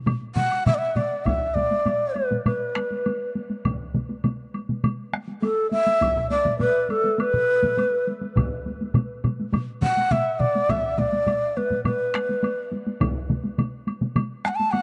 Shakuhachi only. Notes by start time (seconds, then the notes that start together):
0.35 F#5
0.66 E5
0.74 D5 E5
0.96 D5
1.25 E5
1.54 D5
2.14 B4
2.45 B4
5.42 A4
5.71 E5
6.30 D5
6.60 B4
6.91 A4
7.20 B4
9.83 F#5
10.12 E5
10.39 D5
10.70 E5
10.98 D5
11.57 B4
11.85 B4
14.45 F#5 A5
14.55 A5
14.71 F#5